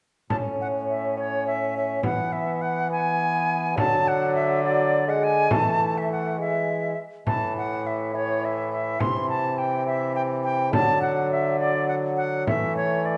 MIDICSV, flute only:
0, 0, Header, 1, 2, 480
1, 0, Start_track
1, 0, Key_signature, 3, "major"
1, 0, Tempo, 579710
1, 253, Time_signature, 6, 3, 24, 8
1, 10908, End_track
2, 0, Start_track
2, 0, Title_t, "Flute"
2, 0, Program_c, 0, 73
2, 248, Note_on_c, 0, 81, 83
2, 303, Note_off_c, 0, 81, 0
2, 506, Note_on_c, 0, 78, 84
2, 558, Note_off_c, 0, 78, 0
2, 743, Note_on_c, 0, 76, 68
2, 972, Note_off_c, 0, 76, 0
2, 987, Note_on_c, 0, 73, 86
2, 1213, Note_off_c, 0, 73, 0
2, 1217, Note_on_c, 0, 76, 86
2, 1448, Note_off_c, 0, 76, 0
2, 1465, Note_on_c, 0, 76, 83
2, 1689, Note_off_c, 0, 76, 0
2, 1694, Note_on_c, 0, 78, 92
2, 1925, Note_on_c, 0, 76, 85
2, 1937, Note_off_c, 0, 78, 0
2, 2165, Note_on_c, 0, 78, 86
2, 2178, Note_off_c, 0, 76, 0
2, 2403, Note_off_c, 0, 78, 0
2, 2416, Note_on_c, 0, 80, 107
2, 3111, Note_off_c, 0, 80, 0
2, 3128, Note_on_c, 0, 81, 101
2, 3377, Note_on_c, 0, 78, 100
2, 3390, Note_off_c, 0, 81, 0
2, 3596, Note_off_c, 0, 78, 0
2, 3601, Note_on_c, 0, 76, 92
2, 3834, Note_off_c, 0, 76, 0
2, 3844, Note_on_c, 0, 74, 97
2, 4218, Note_on_c, 0, 78, 90
2, 4231, Note_off_c, 0, 74, 0
2, 4336, Note_on_c, 0, 80, 101
2, 4349, Note_off_c, 0, 78, 0
2, 4571, Note_on_c, 0, 81, 106
2, 4583, Note_off_c, 0, 80, 0
2, 4949, Note_on_c, 0, 76, 88
2, 4961, Note_off_c, 0, 81, 0
2, 5055, Note_off_c, 0, 76, 0
2, 5067, Note_on_c, 0, 78, 83
2, 5292, Note_off_c, 0, 78, 0
2, 5305, Note_on_c, 0, 76, 98
2, 5778, Note_off_c, 0, 76, 0
2, 6018, Note_on_c, 0, 81, 93
2, 6240, Note_off_c, 0, 81, 0
2, 6275, Note_on_c, 0, 78, 90
2, 6513, Note_on_c, 0, 76, 73
2, 6526, Note_off_c, 0, 78, 0
2, 6750, Note_on_c, 0, 73, 89
2, 6762, Note_off_c, 0, 76, 0
2, 6997, Note_on_c, 0, 76, 85
2, 7009, Note_off_c, 0, 73, 0
2, 7219, Note_off_c, 0, 76, 0
2, 7224, Note_on_c, 0, 76, 84
2, 7457, Note_on_c, 0, 84, 91
2, 7469, Note_off_c, 0, 76, 0
2, 7690, Note_off_c, 0, 84, 0
2, 7695, Note_on_c, 0, 81, 93
2, 7935, Note_on_c, 0, 79, 82
2, 7947, Note_off_c, 0, 81, 0
2, 8166, Note_off_c, 0, 79, 0
2, 8171, Note_on_c, 0, 76, 95
2, 8405, Note_off_c, 0, 76, 0
2, 8409, Note_on_c, 0, 79, 93
2, 8463, Note_off_c, 0, 79, 0
2, 8644, Note_on_c, 0, 79, 97
2, 8879, Note_off_c, 0, 79, 0
2, 8889, Note_on_c, 0, 81, 104
2, 9121, Note_off_c, 0, 81, 0
2, 9125, Note_on_c, 0, 78, 91
2, 9359, Note_off_c, 0, 78, 0
2, 9371, Note_on_c, 0, 76, 84
2, 9597, Note_off_c, 0, 76, 0
2, 9602, Note_on_c, 0, 74, 93
2, 9838, Note_off_c, 0, 74, 0
2, 9842, Note_on_c, 0, 78, 87
2, 9896, Note_off_c, 0, 78, 0
2, 10075, Note_on_c, 0, 78, 95
2, 10316, Note_off_c, 0, 78, 0
2, 10331, Note_on_c, 0, 76, 98
2, 10565, Note_off_c, 0, 76, 0
2, 10570, Note_on_c, 0, 73, 92
2, 10810, Note_on_c, 0, 74, 75
2, 10823, Note_off_c, 0, 73, 0
2, 10908, Note_off_c, 0, 74, 0
2, 10908, End_track
0, 0, End_of_file